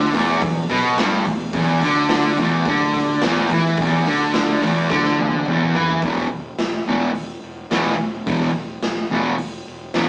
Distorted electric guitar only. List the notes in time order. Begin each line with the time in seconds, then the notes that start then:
Already playing: D3
0.14 E2
0.42 E2
0.70 B2
0.99 G2
1.27 E2
1.54 E2
1.83 D3
2.39 E2
2.68 D3
3.24 E2
3.52 E3
3.81 E2
4.07 D3
4.62 E2
4.90 D3
5.48 E2
5.75 E3
6.04 E2 B2 E3
6.88 E2 B2 E3
7.71 E2 B2 E3
8.27 E2 B2 E3
9.11 E2 B2 E3
9.95 E2 B2 E3